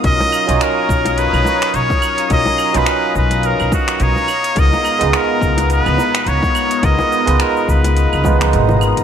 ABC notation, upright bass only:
X:1
M:4/4
L:1/16
Q:"Swing 16ths" 1/4=106
K:Blyd
V:1 name="Upright bass" clef=bass
B,,, z2 B,,, z2 B,,,3 B,,, z2 B,,, z3 | B,,, z2 B,,, z2 B,,,3 B,,, z2 B,,, z3 | C,, z2 C,, z2 C,,3 C,, z2 C,, z3 | C,, z2 C,, z2 C,,3 C,,3 G,,,3 z |]